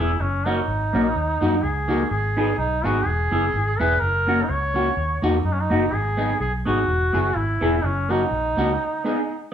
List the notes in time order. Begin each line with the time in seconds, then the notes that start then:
Already playing: E4
0.00 E1 B3 E4 G#4
0.20 F#1 C#4
0.46 A#3 C#4 D#4 F#4
0.68 G#1
0.93 A#1 A#3 C#4 F#4
1.16 D#2
1.41 F#2 A#3 D#4 F#4
1.63 C#2 G#4
1.88 A#3 D#4 F#4
2.11 G#1 G#4
2.36 B3 D#4 G#4
2.58 B1 D#4
2.84 G#1 B3 D#4 F#4 G#4
3.06 E1 G#4
3.31 F#1 B3 E4 G#4
3.54 G#1
3.79 E1 B3 E4 G#4 B4
4.01 F#1 A#4
4.27 A#3 C#4 F#4
4.43 D#4
4.49 C#2 C#5
4.74 A#3 C#4 F#4
4.97 D#2
5.22 E2 A#3 D#4 F#4
5.44 F#2 D#4
5.53 C#4
5.61 D#4
5.70 F#1 A#3 D#4 F#4
5.92 G#1 G#4
6.17 B3 D#4 G#4
6.40 B1 G#4
6.65 G#1 B3 D#4 F#4 G#4
6.88 E1
7.13 F#1 B3 E4 G#4
7.36 G#1 E4
7.61 E1 B3 E4 G#4
7.84 F#1 C#4
8.09 A#3 C#4 D#4 F#4
8.31 A#1
8.57 C#2 A#3 C#4 F#4
9.04 B3 D#4 G#4